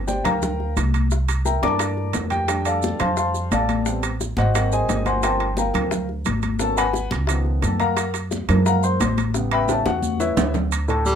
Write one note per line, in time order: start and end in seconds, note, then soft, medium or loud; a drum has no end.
0.00 0.19 G1 medium
0.07 0.25 G4 medium
0.07 0.25 C5 medium
0.07 0.25 D5 medium
0.07 0.23 G5 medium
0.07 high bongo medium
0.07 high conga medium
0.07 maracas medium
0.24 0.73 D2 medium
0.24 0.73 A#4 medium
0.24 0.73 F5 medium
0.24 0.73 G5 medium
0.24 0.73 A#5 medium
0.24 high bongo soft
0.24 low conga medium
0.24 high timbale medium
0.24 maracas soft
0.42 high bongo medium
0.42 high conga soft
0.42 low conga medium
0.42 maracas medium
0.60 high bongo soft
0.60 high conga soft
0.77 1.57 C2 medium
0.77 high bongo soft
0.77 low bongo medium
0.77 high conga medium
0.77 high timbale medium
0.77 maracas medium
0.94 high conga medium
0.94 high timbale medium
0.94 maracas soft
1.11 high bongo medium
1.11 high conga soft
1.11 maracas medium
1.29 high bongo soft
1.29 high conga soft
1.29 high timbale medium
1.29 maracas medium
1.45 1.62 A#4 medium
1.45 1.62 E5 medium
1.45 1.62 G5 medium
1.45 1.62 A#5 medium
1.45 high bongo medium
1.45 high conga medium
1.45 maracas medium
1.62 2.11 G2 medium
1.62 2.44 E3 medium
1.62 2.45 A3 soft
1.62 2.45 A#3 soft
1.62 2.45 D4 medium
1.62 2.11 D5 medium
1.62 2.11 A5 medium
1.62 2.11 A#5 medium
1.62 2.11 D6 loud
1.62 high bongo soft
1.62 high conga medium
1.62 high timbale medium
1.62 maracas soft
1.79 high bongo medium
1.79 high conga soft
1.79 high timbale medium
1.79 maracas medium
1.97 high bongo soft
1.97 high conga soft
2.13 2.95 F2 medium
2.13 high bongo soft
2.13 low bongo medium
2.13 high conga medium
2.13 high timbale medium
2.13 low timbale medium
2.13 maracas medium
2.30 2.63 G4 medium
2.30 2.63 G5 medium
2.30 high conga medium
2.30 high timbale medium
2.30 maracas soft
2.48 3.82 G3 medium
2.48 3.82 A3 medium
2.48 3.82 D4 medium
2.48 high bongo medium
2.48 high conga soft
2.48 high timbale medium
2.48 maracas medium
2.65 2.98 A4 medium
2.65 2.98 D5 medium
2.65 2.98 F5 medium
2.65 2.98 A5 medium
2.65 high bongo soft
2.65 high conga soft
2.65 high timbale medium
2.65 maracas medium
2.82 high bongo medium
2.82 high conga medium
2.82 maracas medium
2.99 3.48 F2 medium
2.99 3.16 C5 medium
2.99 3.16 F5 medium
2.99 3.16 A5 medium
2.99 3.15 C6 medium
2.99 high bongo soft
2.99 low conga medium
2.99 high timbale medium
2.99 maracas soft
3.17 3.49 C5 medium
3.17 3.49 F5 medium
3.17 3.49 A5 medium
3.17 3.49 C6 medium
3.17 high bongo medium
3.17 high conga soft
3.17 maracas medium
3.34 high bongo soft
3.34 high conga soft
3.34 maracas medium
3.51 4.32 A1 medium
3.51 4.00 A4 medium
3.51 4.00 D5 medium
3.51 3.84 F5 medium
3.51 4.00 A5 medium
3.51 high bongo soft
3.51 low bongo medium
3.51 high conga medium
3.51 high timbale medium
3.51 low timbale medium
3.51 maracas medium
3.69 high conga medium
3.69 high timbale medium
3.69 maracas soft
3.86 4.09 G3 medium
3.86 4.09 B3 medium
3.86 4.09 C4 medium
3.86 high bongo medium
3.86 maracas medium
4.03 high bongo soft
4.03 high conga soft
4.03 high timbale medium
4.03 maracas medium
4.21 high bongo medium
4.21 high conga medium
4.21 maracas medium
4.37 4.85 G#1 medium
4.37 4.70 F#4 medium
4.37 4.70 C5 medium
4.37 4.70 D#5 medium
4.37 4.70 F#5 medium
4.37 high bongo soft
4.37 high conga medium
4.37 high timbale medium
4.37 maracas soft
4.54 5.20 F#3 medium
4.54 5.20 A#3 soft
4.54 5.21 C4 medium
4.54 high bongo medium
4.54 high conga soft
4.54 high timbale medium
4.54 maracas medium
4.71 5.04 G#4 medium
4.71 5.04 C5 medium
4.71 5.04 D#5 medium
4.71 5.04 G#5 medium
4.71 high bongo soft
4.71 high conga soft
4.71 maracas medium
4.89 5.69 G1 medium
4.89 high bongo soft
4.89 low bongo medium
4.89 high conga medium
4.89 high timbale medium
4.89 low timbale medium
4.89 maracas medium
5.06 5.23 C5 medium
5.06 5.23 F#5 medium
5.06 5.23 G#5 medium
5.06 5.23 C6 medium
5.06 high conga medium
5.06 high timbale medium
5.06 maracas soft
5.23 5.46 F3 medium
5.23 5.46 A3 soft
5.23 5.46 A#3 soft
5.23 5.46 C4 medium
5.23 5.56 C5 medium
5.23 5.56 G5 medium
5.23 5.56 A5 medium
5.23 5.56 C6 medium
5.23 high bongo medium
5.23 high conga soft
5.23 high timbale medium
5.23 maracas medium
5.40 high bongo soft
5.40 high conga soft
5.40 high timbale medium
5.57 6.06 A#4 medium
5.57 6.06 F5 medium
5.57 6.06 G5 medium
5.57 6.06 A#5 medium
5.57 high bongo medium
5.57 high conga medium
5.57 maracas medium
5.74 6.22 D2 medium
5.74 5.90 F3 soft
5.74 5.90 A3 soft
5.74 5.90 A#3 soft
5.74 5.90 C4 medium
5.74 high bongo soft
5.74 low conga medium
5.74 high timbale medium
5.74 maracas soft
5.91 high bongo medium
5.91 high conga soft
5.91 low conga medium
5.91 maracas medium
6.09 high bongo soft
6.09 high conga soft
6.25 7.06 G#1 medium
6.25 high bongo soft
6.25 low bongo medium
6.25 high conga medium
6.25 high timbale medium
6.25 maracas medium
6.42 high conga medium
6.42 high timbale medium
6.42 maracas soft
6.59 6.83 F#3 medium
6.59 6.83 A#3 medium
6.59 6.83 B3 medium
6.59 6.83 C#4 medium
6.59 6.78 A4 medium
6.59 6.77 A5 loud
6.59 high bongo medium
6.59 maracas medium
6.76 7.10 B4 medium
6.76 7.10 F#5 medium
6.76 7.10 G#5 medium
6.76 7.09 B5 loud
6.76 high bongo soft
6.76 high conga soft
6.76 high timbale medium
6.76 maracas medium
6.93 high bongo medium
6.93 high conga medium
6.93 maracas medium
7.11 7.59 C#2 medium
7.11 high bongo soft
7.11 high conga loud
7.11 high timbale medium
7.11 maracas soft
7.27 7.77 D#3 medium
7.27 7.78 F3 soft
7.27 7.78 B3 medium
7.27 high bongo medium
7.27 high timbale medium
7.27 maracas medium
7.45 high bongo soft
7.45 high conga soft
7.62 8.43 F#2 medium
7.62 7.81 A4 medium
7.62 7.80 A5 medium
7.62 high bongo soft
7.62 low bongo medium
7.62 high conga medium
7.62 high timbale medium
7.62 maracas medium
7.80 8.12 A#4 medium
7.80 8.12 F5 medium
7.80 8.12 F#5 medium
7.80 8.12 A#5 loud
7.80 high conga medium
7.80 high timbale medium
7.80 maracas soft
7.97 high bongo medium
7.97 high timbale medium
7.97 maracas medium
8.14 high bongo soft
8.14 high conga soft
8.14 high timbale medium
8.14 maracas medium
8.31 high bongo medium
8.31 high conga medium
8.31 maracas medium
8.49 8.97 F#2 loud
8.49 8.98 F3 medium
8.49 8.98 G#3 soft
8.49 8.98 A#3 medium
8.49 high bongo soft
8.49 low conga medium
8.49 high timbale loud
8.49 maracas soft
8.66 8.83 A#4 medium
8.66 8.83 F5 medium
8.66 8.83 F#5 medium
8.66 8.83 A#5 loud
8.66 high bongo medium
8.66 high conga soft
8.66 maracas medium
8.83 9.16 C5 medium
8.83 9.15 C6 loud
8.83 high bongo soft
8.83 high conga soft
8.83 maracas medium
9.00 9.80 A1 medium
9.00 high bongo soft
9.00 low bongo medium
9.00 high conga medium
9.00 high timbale medium
9.00 low timbale medium
9.00 maracas medium
9.18 high conga medium
9.18 high timbale medium
9.18 maracas soft
9.34 10.68 C#3 medium
9.34 10.68 G3 medium
9.34 10.68 B3 medium
9.34 high bongo medium
9.34 high conga soft
9.34 maracas medium
9.51 9.69 B4 medium
9.51 9.69 E5 medium
9.51 9.69 G5 medium
9.51 9.69 B5 loud
9.51 high bongo soft
9.51 high timbale medium
9.68 9.87 A4 medium
9.68 9.87 C#5 medium
9.68 9.87 E5 medium
9.68 9.87 A5 medium
9.68 high bongo medium
9.68 high conga medium
9.68 high timbale medium
9.68 maracas medium
9.86 10.34 E2 medium
9.86 10.18 F#4 medium
9.86 10.18 F#5 medium
9.86 high bongo medium
9.86 high conga medium
9.86 high timbale medium
9.86 maracas soft
10.02 high conga medium
10.02 maracas medium
10.20 10.52 E4 medium
10.20 10.52 B4 medium
10.20 10.52 C#5 medium
10.20 10.52 E5 loud
10.20 low bongo medium
10.20 maracas medium
10.37 11.15 D2 medium
10.37 low bongo medium
10.37 low conga loud
10.37 low timbale medium
10.37 maracas medium
10.54 low bongo medium
10.54 low conga medium
10.54 low timbale medium
10.54 maracas soft
10.71 high conga soft
10.71 high timbale medium
10.71 maracas medium
10.88 11.15 A2 medium
10.88 11.15 A3 medium
10.88 11.15 A4 medium
10.88 high conga soft
10.88 high timbale medium
10.88 maracas soft
11.06 11.15 G3 medium
11.06 high conga medium
11.06 maracas medium